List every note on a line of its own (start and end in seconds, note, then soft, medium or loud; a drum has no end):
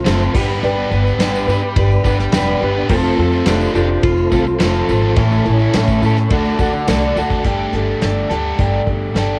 0.00 0.32 C4 medium
0.00 0.32 F4 medium
0.00 0.32 A4 medium
0.00 0.32 C5 medium
0.05 0.28 F#1 loud
0.05 0.32 F3 loud
0.05 0.32 A3 medium
0.05 0.33 C4 loud
0.05 0.33 F4 medium
0.05 0.33 A4 loud
0.05 snare loud
0.05 ride bell medium
0.05 tambourine loud
0.21 tambourine soft
0.33 0.56 G1 loud
0.33 0.60 G3 medium
0.33 2.87 B3 medium
0.33 0.48 B3 medium
0.33 0.49 D4 loud
0.33 2.88 D4 medium
0.33 2.88 G4 medium
0.33 0.62 G4 medium
0.33 2.87 B4 medium
0.33 0.46 B4 loud
0.33 kick loud
0.33 tambourine medium
0.33 crash loud
0.47 0.62 B3 medium
0.47 0.61 D4 medium
0.47 0.63 B4 medium
0.61 0.85 G1 medium
0.61 1.04 G3 medium
0.61 0.76 B3 loud
0.61 0.77 D4 medium
0.61 0.91 G4 loud
0.61 0.74 B4 loud
0.61 tambourine soft
0.75 1.05 B3 medium
0.75 1.07 D4 medium
0.75 1.03 B4 medium
0.90 1.13 G1 loud
0.90 1.19 D4 medium
0.90 1.19 G4 medium
0.90 1.19 B4 medium
0.90 tambourine soft
1.05 1.20 B3 medium
1.05 1.19 D4 medium
1.05 1.21 B4 medium
1.05 tambourine soft
1.19 1.41 G1 medium
1.19 1.47 G3 medium
1.19 1.49 B3 loud
1.19 1.48 D4 loud
1.19 1.48 G4 medium
1.19 1.50 B4 loud
1.19 snare loud
1.19 ride bell medium
1.19 tambourine loud
1.36 tambourine medium
1.48 1.70 G2 medium
1.48 1.90 G3 medium
1.48 1.62 B3 loud
1.48 1.62 D4 medium
1.48 1.77 G4 medium
1.48 1.62 B4 loud
1.48 tambourine medium
1.63 muted overdriven electric guitar stroke medium
1.76 1.99 G1 loud
1.76 2.04 G3 medium
1.76 2.05 D4 medium
1.76 2.04 G4 medium
1.76 2.03 B4 medium
1.76 kick loud
1.76 ride bell medium
1.76 tambourine soft
1.92 tambourine soft
2.05 2.27 G1 medium
2.05 2.32 G3 medium
2.05 2.18 B3 medium
2.05 2.18 D4 medium
2.05 2.33 G4 medium
2.05 2.18 B4 medium
2.05 kick medium
2.05 tambourine medium
2.19 muted overdriven electric guitar stroke medium
2.19 snare soft
2.19 tambourine soft
2.32 2.56 F1 loud
2.32 2.60 G3 medium
2.32 2.63 B3 medium
2.32 2.62 D4 medium
2.32 2.61 G4 medium
2.32 2.64 B4 medium
2.32 snare loud
2.32 ride bell medium
2.32 tambourine loud
2.60 2.84 G1 medium
2.60 2.88 G3 medium
2.60 2.76 B3 medium
2.60 2.77 D4 medium
2.60 2.90 G4 medium
2.60 2.89 B4 medium
2.65 2.75 B4 medium
2.76 2.89 B3 medium
2.76 2.90 D4 medium
2.76 2.88 B4 medium
2.89 3.12 F1 medium
2.89 3.32 F3 medium
2.89 3.48 A3 medium
2.89 5.15 C4 medium
2.89 3.18 C4 medium
2.89 3.06 C4 medium
2.89 5.15 F4 medium
2.89 3.04 F4 loud
2.89 3.18 A4 medium
2.89 5.15 A4 medium
2.89 3.04 A4 loud
2.89 5.15 C5 medium
2.89 kick loud
2.89 tambourine soft
2.89 crash medium
3.04 3.34 C4 medium
3.04 3.32 F4 medium
3.04 3.31 A4 medium
3.17 3.41 F2 medium
3.17 3.45 C4 medium
3.17 3.46 C4 medium
3.17 3.46 F4 medium
3.17 3.46 A4 medium
3.32 3.47 C4 medium
3.32 3.48 F4 medium
3.32 3.49 A4 medium
3.32 tambourine soft
3.46 3.68 F1 medium
3.46 4.04 F3 medium
3.46 3.74 A3 medium
3.46 3.75 C4 loud
3.46 3.73 D4 medium
3.46 3.76 F4 loud
3.46 3.74 G4 medium
3.46 3.77 A4 loud
3.46 snare loud
3.46 ride bell medium
3.46 tambourine loud
3.61 tambourine medium
3.73 3.97 F1 medium
3.73 3.90 A3 medium
3.73 3.89 C4 medium
3.73 4.01 D4 medium
3.73 3.89 F4 loud
3.73 4.03 G4 medium
3.73 4.03 A4 medium
3.73 tambourine medium
3.78 3.90 A4 medium
3.90 muted overdriven electric guitar stroke medium
4.02 4.26 F1 loud
4.02 4.31 A3 medium
4.02 4.31 C4 medium
4.02 4.58 F4 loud
4.02 4.30 F4 medium
4.02 4.29 A4 medium
4.02 kick loud
4.02 ride bell medium
4.02 tambourine soft
4.17 tambourine soft
4.30 4.54 C2 medium
4.30 4.46 A3 medium
4.30 4.45 C4 medium
4.30 4.59 A4 medium
4.30 kick medium
4.30 tambourine medium
4.34 4.45 F4 medium
4.34 4.46 A4 medium
4.46 muted overdriven electric guitar stroke soft
4.46 tambourine soft
4.59 4.82 F1 medium
4.59 5.15 F3 medium
4.59 4.88 A3 loud
4.59 4.88 C4 loud
4.59 4.89 F4 medium
4.59 4.91 A4 loud
4.59 snare loud
4.59 ride bell medium
4.59 tambourine medium
4.75 tambourine soft
4.89 5.11 G#1 loud
4.89 5.17 A3 medium
4.89 5.04 C4 medium
4.89 5.03 F4 medium
4.89 5.02 A4 medium
4.89 tambourine medium
5.02 5.17 C4 medium
5.02 5.16 F4 medium
5.02 5.19 A4 medium
5.16 5.39 A1 medium
5.16 5.60 A2 medium
5.16 5.45 E3 medium
5.16 5.60 A3 medium
5.16 6.30 C#4 medium
5.16 5.33 C#4 loud
5.16 6.30 E4 medium
5.16 5.31 E4 loud
5.16 6.30 A4 medium
5.16 5.30 A4 medium
5.16 6.30 C#5 medium
5.16 kick loud
5.16 ride bell medium
5.16 tambourine soft
5.31 5.60 C#4 medium
5.31 5.59 E4 medium
5.31 5.57 A4 medium
5.31 tambourine soft
5.44 5.68 A1 loud
5.44 5.73 A3 medium
5.44 5.73 C#4 medium
5.44 5.74 E4 medium
5.44 5.73 A4 medium
5.44 tambourine soft
5.59 5.74 C#4 medium
5.59 5.75 E4 medium
5.59 5.76 A4 medium
5.59 tambourine soft
5.73 5.96 A1 medium
5.73 6.29 A2 medium
5.73 6.02 E3 medium
5.73 6.02 A3 loud
5.73 6.03 C#4 loud
5.73 6.04 E4 loud
5.73 6.05 A4 loud
5.73 snare loud
5.73 ride bell medium
5.73 tambourine medium
5.88 kick medium
5.88 tambourine medium
6.01 6.24 A2 loud
6.01 6.17 A3 medium
6.01 6.17 C#4 medium
6.01 6.30 A4 medium
6.01 tambourine medium
6.05 6.17 E4 medium
6.05 6.17 A4 medium
6.16 muted overdriven electric guitar stroke medium
6.16 snare soft
6.16 tambourine soft
6.29 6.53 D2 loud
6.29 6.58 D3 medium
6.29 6.58 A3 medium
6.29 7.44 D4 medium
6.29 6.59 D4 medium
6.29 7.44 F#4 medium
6.29 6.60 F#4 loud
6.29 7.44 A4 medium
6.29 7.44 D5 medium
6.29 kick loud
6.29 ride bell medium
6.29 tambourine soft
6.34 6.61 A4 medium
6.45 tambourine soft
6.59 6.81 D2 loud
6.59 6.86 D3 medium
6.59 6.74 D4 medium
6.59 6.74 F#4 medium
6.59 6.73 A4 medium
6.59 kick medium
6.59 tambourine medium
6.73 muted overdriven electric guitar stroke soft
6.73 tambourine soft
6.87 7.10 C2 medium
6.87 7.15 D3 loud
6.87 7.16 A3 loud
6.87 7.15 D4 medium
6.87 7.17 F#4 medium
6.87 7.17 A4 loud
6.87 snare loud
6.87 ride bell medium
6.87 tambourine loud
7.16 7.39 D2 medium
7.16 7.43 D3 medium
7.16 7.32 D4 medium
7.16 7.30 F#4 medium
7.16 7.29 A4 medium
7.16 tambourine medium
7.30 7.44 D4 medium
7.30 7.44 F#4 medium
7.30 7.43 A4 medium
7.30 kick medium
7.30 tambourine soft
7.44 7.65 G1 medium
7.44 8.28 G3 medium
7.44 8.31 A3 medium
7.44 8.29 D4 medium
7.44 7.74 G4 medium
7.44 8.29 A4 medium
7.44 kick loud
7.44 closed hi-hat medium
7.73 7.93 G1 medium
7.73 8.02 D4 medium
7.73 8.03 G4 medium
7.73 8.02 A4 medium
7.73 closed hi-hat medium
8.01 8.22 G1 medium
8.01 8.30 G3 medium
8.01 8.31 D4 medium
8.01 8.30 G4 medium
8.01 8.28 A4 medium
8.01 snare loud
8.01 closed hi-hat medium
8.30 8.51 D2 medium
8.30 9.13 G3 medium
8.30 9.15 A3 medium
8.30 9.14 D4 medium
8.30 8.58 G4 medium
8.30 9.17 A4 medium
8.30 snare soft
8.30 closed hi-hat medium
8.58 8.79 G1 medium
8.58 8.87 G3 medium
8.58 8.87 D4 medium
8.58 8.87 G4 medium
8.58 8.86 A4 medium
8.58 kick loud
8.58 closed hi-hat medium
8.87 9.08 G1 medium
8.87 9.15 D4 medium
8.87 9.15 G4 medium
8.87 9.16 A4 medium
8.87 kick medium
8.87 closed hi-hat medium
9.14 9.39 G1 medium
9.14 9.39 G3 medium
9.14 9.39 A3 medium
9.14 9.39 D4 medium
9.14 9.39 G4 medium
9.14 9.39 A4 medium
9.14 snare loud
9.14 closed hi-hat medium